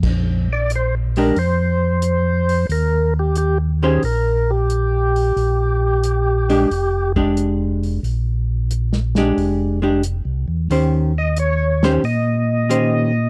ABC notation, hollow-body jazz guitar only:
X:1
M:4/4
L:1/8
Q:"Swing" 1/4=90
K:Bbmix
V:1 name="Hollow-body jazz guitar"
z3 [A,DG] z4 | z3 [E,_DGc] z4 | z3 [A,DG] z [A,DG]3 | z3 [A,DG]2 [A,DG] z2 |
[E,_DGc] z2 [E,DGc] z2 [E,DGc] z |]